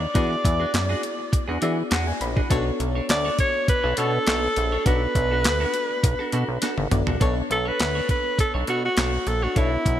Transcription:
Already playing: fm electric piano B3 D4 F#4 A4, alto saxophone D5
0.01 muted clean electric guitar stroke
0.14 analog synth bass E2, fm electric piano B3 E4 F#4 G#4 D5, clean electric guitar D4 F#4 G#4, kick, closed hi-hat
0.31 muted clean electric guitar stroke
0.44 analog synth bass E2, muted clean electric guitar stroke, kick, closed hi-hat
0.60 clean electric guitar D4 F#4 G#4
0.74 analog synth bass F#2, snare, clap, closed hi-hat
0.89 clean electric guitar D4 F#4 G#4
1.03 muted clean electric guitar stroke, closed hi-hat
1.19 muted clean electric guitar stroke
1.32 muted clean electric guitar stroke, kick, closed hi-hat
1.48 analog synth bass E2, clean electric guitar D4 F#4 G#4
1.61 analog synth bass E3, fm electric piano B3 E4 F#4 G#4 D5 E5, clean electric guitar D4 F#4 G#4, closed hi-hat
1.77 muted clean electric guitar stroke
1.91 analog synth bass E2, clean electric guitar D4 F#4 G#4, fm electric piano F#5, snare, clap, closed hi-hat
2.07 fm electric piano G#5, muted clean electric guitar stroke
2.20 analog synth bass A#1, fm electric piano B5, muted clean electric guitar stroke, closed hi-hat
2.36 clean electric guitar D4 F#4 G#4, kick
2.50 analog synth bass B1, fm electric piano B3 D4 F#4 A4 C#5, clean electric guitar D4 A4 C#5, kick, closed hi-hat
2.66 muted clean electric guitar stroke
2.80 analog synth bass B1, muted clean electric guitar stroke, closed hi-hat
2.95 clean electric guitar D4 A4 C#5
3.09 analog synth bass D2, alto saxophone D5, muted clean electric guitar stroke, snare, clap, closed hi-hat
3.25 clean electric guitar D4 A4 C#5
3.39 alto saxophone C#5, muted clean electric guitar stroke, kick, closed hi-hat
3.54 muted clean electric guitar stroke
3.68 alto saxophone B4, muted clean electric guitar stroke, kick, closed hi-hat
3.84 analog synth bass B1, clean electric guitar D4 A4 C#5
3.97 analog synth bass B2, fm electric piano B3 C#4 F#4 A4 C#5, clean electric guitar D4 A4 C#5, alto saxophone A4, closed hi-hat
4.04 fm electric piano D4
4.13 muted clean electric guitar stroke
4.27 analog synth bass B1, clean electric guitar D4 A4 C#5, snare, clap, closed hi-hat
4.43 muted clean electric guitar stroke
4.56 analog synth bass A#1, muted clean electric guitar stroke, closed hi-hat
4.72 clean electric guitar D4 A4 C#5
4.85 analog synth bass B1, fm electric piano B3 D4 F#4 A4 D5, clean electric guitar D4 F#4 A4, alto saxophone B4, kick, closed hi-hat
5.15 analog synth bass B1, muted clean electric guitar stroke, kick, closed hi-hat
5.31 clean electric guitar D4 F#4 A4
5.44 analog synth bass D2, muted clean electric guitar stroke, snare, clap, closed hi-hat
5.60 clean electric guitar D4 F#4 A4
5.74 muted clean electric guitar stroke, closed hi-hat
5.89 muted clean electric guitar stroke
6.03 analog synth bass B1, muted clean electric guitar stroke, kick, closed hi-hat
6.19 clean electric guitar D4 F#4 A4
6.32 analog synth bass B2, clean electric guitar D4 F#4 A4, closed hi-hat
6.48 analog synth bass B1, muted clean electric guitar stroke
6.62 clean electric guitar D4 F#4 A4, snare, closed hi-hat
6.78 analog synth bass G#1, muted clean electric guitar stroke, high tom
6.91 analog synth bass A1, fm electric piano B3 D4 F#4 A4 D5, muted clean electric guitar stroke, closed hi-hat, mid tom
7.07 analog synth bass A#1, clean electric guitar D4 F#4 A4, floor tom
7.20 analog synth bass B1, fm electric piano B3 D4 A4 C#5, clean electric guitar D4 A4 C#5, kick, closed hi-hat
7.36 muted clean electric guitar stroke
7.50 analog synth bass B1, alto saxophone A4, muted clean electric guitar stroke, closed hi-hat
7.65 clean electric guitar D4 A4 C#5, alto saxophone B4
7.80 analog synth bass D2, snare, clap, closed hi-hat
7.95 clean electric guitar D4 A4 C#5
8.09 alto saxophone B4, muted clean electric guitar stroke, kick, closed hi-hat
8.24 muted clean electric guitar stroke
8.39 alto saxophone A4, muted clean electric guitar stroke, kick, closed hi-hat
8.54 analog synth bass B1, clean electric guitar D4 A4 C#5
8.67 analog synth bass B2, clean electric guitar D4 A4 C#5, alto saxophone F#4, closed hi-hat
8.84 alto saxophone F#4, muted clean electric guitar stroke
8.97 analog synth bass B1, clean electric guitar D4 A4 C#5, snare, clap, closed hi-hat
9.13 muted clean electric guitar stroke
9.26 analog synth bass A#1, alto saxophone A4, muted clean electric guitar stroke, closed hi-hat
9.42 clean electric guitar D4 A4 C#5, alto saxophone F#4
9.55 analog synth bass B1, fm electric piano B3 D4 A4 C#5, clean electric guitar D4 A4 C#5, alto saxophone E4, kick, closed hi-hat
9.71 muted clean electric guitar stroke
9.85 analog synth bass B1, muted clean electric guitar stroke, kick, closed hi-hat

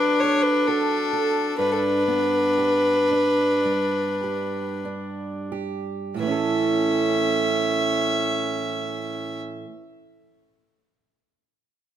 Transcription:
Already playing: steel-string acoustic guitar F#3 D4 F#4 A4, viola D4, fiddle B4
0.20 steel-string acoustic guitar A4, fiddle C#5
0.42 fiddle B4
0.67 steel-string acoustic guitar F#4, fiddle A4
1.13 steel-string acoustic guitar A4
1.59 steel-string acoustic guitar G2, viola D4, fiddle B4
1.72 fiddle A4 B4
2.08 steel-string acoustic guitar B3
2.58 steel-string acoustic guitar G4
3.11 steel-string acoustic guitar D4
3.65 steel-string acoustic guitar G3
4.24 steel-string acoustic guitar G4
4.85 steel-string acoustic guitar D4
5.52 steel-string acoustic guitar G4
6.14 steel-string acoustic guitar A2
6.19 steel-string acoustic guitar E3 A3, viola C#4, fiddle E5
6.27 steel-string acoustic guitar C#4
6.31 steel-string acoustic guitar A4

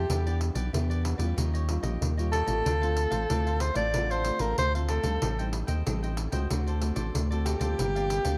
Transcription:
Already playing: soprano saxophone G4
0.10 analog synth bass E2, nylon-string guitar E3 B3 D4 G4, cavaquinho E4 G4 B4 D5, pandeiro
0.26 nylon-string guitar B3 D4 G4, cavaquinho G4 B4 D5, pandeiro
0.40 muted cavaquinho stroke, pandeiro
0.55 analog synth bass B1, cavaquinho G4 B4 D5, pandeiro
0.73 analog synth bass E2, nylon-string guitar B2 B3 D4 G4, cavaquinho E4 G4 D5, pandeiro
0.90 cavaquinho G4 B4 D5, pandeiro
1.04 muted cavaquinho stroke, pandeiro
1.18 analog synth bass E2, nylon-string guitar G3 C#4 F4, cavaquinho G4 B4 D5, pandeiro
1.37 analog synth bass D#2, nylon-string guitar D#3, cavaquinho D#4 G4 C#5 D#5, pandeiro
1.53 cavaquinho G4 C#5 D#5, pandeiro
1.68 nylon-string guitar G3 C#4 F4, pandeiro
1.83 analog synth bass A#1, cavaquinho G4 C#5 D#5, pandeiro
2.01 analog synth bass D#2, nylon-string guitar A#2, pandeiro
2.17 nylon-string guitar G3 C#4 F4, cavaquinho G4 C#5 D#5, pandeiro
2.31 cavaquinho D#4 G4 C#5 D#5, soprano saxophone A4, pandeiro
2.46 analog synth bass A1, nylon-string guitar A3 C4 F4, cavaquinho G4 C#5 D#5, pandeiro
2.65 analog synth bass D2, nylon-string guitar D3, cavaquinho D4 A4 C5 F5, pandeiro
2.81 nylon-string guitar A3 C4 F4, cavaquinho A4 C5 F5, pandeiro
2.96 muted cavaquinho stroke, pandeiro
3.10 analog synth bass A1, cavaquinho A4 C5 F5, pandeiro
3.29 analog synth bass D2, nylon-string guitar A2 A3 C4 F4, cavaquinho D4 A4 C5 F5, pandeiro
3.46 cavaquinho A4 C5 F5, pandeiro
3.60 soprano saxophone C5, muted cavaquinho stroke, pandeiro
3.74 analog synth bass A1, nylon-string guitar A3 C4 F4, cavaquinho A4 C5 F5, soprano saxophone D5, pandeiro
3.93 nylon-string guitar D3 A3 C4 F4, cavaquinho D4 A4 C5 F5, pandeiro
4.10 cavaquinho A4 C5 F5, soprano saxophone C5, pandeiro
4.25 nylon-string guitar A3 C4 F4, pandeiro
4.39 analog synth bass A1, cavaquinho A4 C5 F5, soprano saxophone A#4, pandeiro
4.58 analog synth bass D2, nylon-string guitar A2, soprano saxophone C5, pandeiro
4.75 nylon-string guitar A3 C4 F4, cavaquinho A4 C5 F5, pandeiro
4.88 cavaquinho D4 A4 C5 F5, soprano saxophone A4, pandeiro
5.03 analog synth bass D2, nylon-string guitar G3 C4 D#4, cavaquinho A4 C5 F5, pandeiro
5.21 analog synth bass A1, nylon-string guitar A2, cavaquinho A4 C5 D#5 G5, pandeiro
5.39 nylon-string guitar G3 C4 D#4, cavaquinho C5 D#5 G5, pandeiro
5.53 muted cavaquinho stroke, pandeiro
5.67 analog synth bass D#2, cavaquinho C5 D#5 G5, pandeiro
5.86 analog synth bass A1, nylon-string guitar A2 G3 C4 D#4, cavaquinho A4 C5 D#5 G5, pandeiro
6.03 cavaquinho C5 D#5 G5, pandeiro
6.17 muted cavaquinho stroke, pandeiro
6.32 analog synth bass C#2, nylon-string guitar A3 C4 F#4, cavaquinho C5 D#5 G5, pandeiro
6.50 analog synth bass D2, nylon-string guitar D3, cavaquinho F#4 A4 C5 D5, pandeiro
6.67 cavaquinho A4 C5 D5, pandeiro
6.81 nylon-string guitar A3 C4 F#4, pandeiro
6.95 analog synth bass A1, cavaquinho A4 C5 D5, pandeiro
7.14 analog synth bass D2, nylon-string guitar A2, pandeiro
7.31 nylon-string guitar A3 C4 F#4, cavaquinho A4 C5 D5, pandeiro
7.45 cavaquinho F#4 A4 C5, soprano saxophone G4, pandeiro
7.59 analog synth bass D2, nylon-string guitar F3 A#3 C4, cavaquinho A4 C5 D5, pandeiro
7.78 analog synth bass G1, nylon-string guitar G2, cavaquinho G4 A#4 D5 F5, pandeiro
7.95 nylon-string guitar F3 A#3 C4, cavaquinho A#4 D5 F5, pandeiro
8.10 muted cavaquinho stroke, pandeiro
8.24 analog synth bass D2, cavaquinho A#4 D5 F5, pandeiro

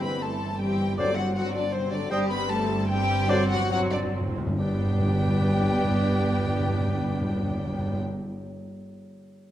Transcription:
Already playing: double bass section G1, cello section G2, viola section E3 C4
0.02 french horn section B3, violin section B4 B5, flute B5
0.22 french horn section A3, violin section A4 A5, flute A5
0.59 viola section E3 C4, french horn section G3, violin section G4 G5, flute G5
0.97 timpani G2, french horn section D3, bassoon F#3, viola section F#3 C4, violin section D4 D5, clarinet C5, flute D5, oboe D5
1.16 french horn section F#3, violin section F#4 F#5, flute F#5
1.35 french horn section F#3, viola section F#3 C4, violin section F#4 F#5, flute F#5
1.53 french horn section D3, violin section D4 D5, flute D5
1.72 french horn section C3, viola section F#3 C4, violin section C4 C5, flute C5
1.90 french horn section D3, violin section D4 D5, flute D5
2.10 double bass section G1, cello section G2, french horn section G3, bassoon G3, viola section G3 C4, violin section G4 G5, clarinet C5, oboe D#5, flute G5
2.29 french horn section B3, violin section B4 B5, flute B5
2.49 french horn section A3, violin section A4 A5, flute A5
2.89 french horn section G3, viola section G3 C4, violin section G4 G5, flute G5
3.28 timpani G2, french horn section D3, bassoon F#3, viola section F#3 C4, violin section D4 D5, clarinet C5, flute D5, oboe D5
3.46 timpani G2, french horn section F#3, violin section F#5, flute F#5
3.50 violin section F#4
3.55 timpani G2
3.63 timpani G2
3.69 timpani G2, french horn section F#3, viola section F#3 C4, violin section F#4 F#5, flute F#5
3.79 timpani G2
3.90 french horn section D3, violin section D4 D5, flute D5
3.95 timpani G2
4.04 timpani G2
4.12 timpani G2
4.21 timpani G2
4.29 timpani G2
4.38 timpani G2
4.47 timpani G2
4.58 double bass section G1, timpani G2, cello section G2, bassoon G3, french horn section G3, viola section B3 D4, violin section G4 G5, clarinet B4, oboe D5, flute G5
4.66 timpani G2
4.72 timpani G2
4.79 timpani G2
4.86 timpani G2
4.93 timpani G2
4.99 timpani G2
5.06 timpani G2
5.13 timpani G2
5.19 timpani G2
5.27 timpani G2
5.34 timpani G2
5.41 timpani G2
5.48 timpani G2
5.55 timpani G2
5.62 timpani G2
5.69 timpani G2
5.76 timpani G2
5.84 timpani G2
5.91 timpani G2
5.98 timpani G2
6.05 timpani G2
6.12 timpani G2
6.19 timpani G2
6.26 timpani G2
6.32 timpani G2
6.39 timpani G2
6.46 timpani G2
6.53 timpani G2
6.60 timpani G2
6.67 timpani G2
6.73 timpani G2
6.80 timpani G2
6.87 timpani G2
6.94 timpani G2
7.01 timpani G2
7.08 timpani G2
7.15 timpani G2
7.21 timpani G2
7.28 timpani G2
7.35 timpani G2
7.43 timpani G2
7.50 timpani G2
7.57 timpani G2
7.65 timpani G2
7.72 timpani G2
7.79 timpani G2
7.86 timpani G2
7.93 timpani G2
8.00 timpani G2

